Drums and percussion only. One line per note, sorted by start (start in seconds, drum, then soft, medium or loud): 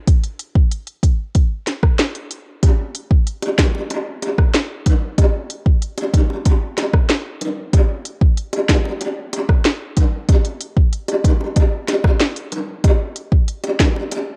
0.07 kick loud
0.07 closed hi-hat medium
0.24 closed hi-hat medium
0.39 closed hi-hat medium
0.55 kick loud
0.71 closed hi-hat medium
0.87 closed hi-hat medium
1.03 kick medium
1.03 closed hi-hat medium
1.35 kick medium
1.35 closed hi-hat medium
1.67 snare medium
1.67 closed hi-hat medium
1.83 kick loud
1.83 cross-stick medium
1.99 snare loud
1.99 closed hi-hat medium
2.15 closed hi-hat medium
2.31 closed hi-hat medium
2.63 kick loud
2.63 closed hi-hat medium
2.63 high bongo medium
2.95 closed hi-hat medium
3.11 kick loud
3.27 closed hi-hat medium
3.42 closed hi-hat medium
3.42 high bongo medium
3.58 kick loud
3.58 snare loud
3.58 closed hi-hat medium
3.58 high bongo medium
3.58 low bongo medium
3.75 high bongo medium
3.90 closed hi-hat medium
3.90 high bongo medium
4.22 closed hi-hat medium
4.22 high bongo medium
4.38 kick loud
4.38 cross-stick medium
4.54 snare loud
4.54 closed hi-hat medium
4.86 kick medium
4.86 closed hi-hat medium
4.86 low bongo medium
5.18 kick loud
5.18 closed hi-hat medium
5.18 high bongo medium
5.50 closed hi-hat medium
5.66 kick loud
5.82 closed hi-hat medium
5.98 closed hi-hat medium
5.98 high bongo medium
6.14 kick medium
6.14 closed hi-hat medium
6.14 high bongo medium
6.14 low bongo medium
6.30 high bongo medium
6.45 kick medium
6.45 closed hi-hat medium
6.45 high bongo medium
6.78 snare medium
6.78 closed hi-hat medium
6.78 high bongo medium
6.93 kick loud
6.93 cross-stick medium
7.10 snare loud
7.10 closed hi-hat medium
7.41 closed hi-hat medium
7.41 low bongo medium
7.73 kick loud
7.73 closed hi-hat medium
7.73 high bongo medium
8.05 closed hi-hat medium
8.21 kick loud
8.37 closed hi-hat medium
8.53 closed hi-hat medium
8.53 high bongo medium
8.69 kick medium
8.69 snare loud
8.69 closed hi-hat medium
8.69 high bongo medium
8.69 low bongo medium
8.85 high bongo medium
9.01 closed hi-hat medium
9.01 high bongo medium
9.33 closed hi-hat medium
9.33 high bongo medium
9.49 kick loud
9.49 cross-stick medium
9.65 snare loud
9.65 closed hi-hat medium
9.97 kick medium
9.97 closed hi-hat medium
9.97 low bongo medium
10.29 kick loud
10.29 closed hi-hat medium
10.29 high bongo medium
10.45 closed hi-hat medium
10.61 closed hi-hat medium
10.77 kick loud
10.93 closed hi-hat medium
11.08 closed hi-hat medium
11.08 high bongo medium
11.24 kick medium
11.24 closed hi-hat medium
11.24 high bongo medium
11.24 low bongo medium
11.41 high bongo medium
11.56 kick loud
11.56 closed hi-hat medium
11.56 high bongo medium
11.88 snare medium
11.88 closed hi-hat medium
11.88 high bongo medium
12.04 kick loud
12.04 cross-stick medium
12.04 high bongo medium
12.20 snare loud
12.20 closed hi-hat medium
12.36 closed hi-hat medium
12.52 closed hi-hat medium
12.52 low bongo medium
12.84 kick loud
12.84 closed hi-hat medium
12.84 high bongo medium
13.16 closed hi-hat medium
13.32 kick loud
13.48 closed hi-hat medium
13.64 closed hi-hat medium
13.64 high bongo medium
13.80 kick medium
13.80 snare loud
13.80 closed hi-hat medium
13.80 high bongo medium
13.80 low bongo medium
13.96 high bongo medium
14.11 closed hi-hat medium
14.11 high bongo medium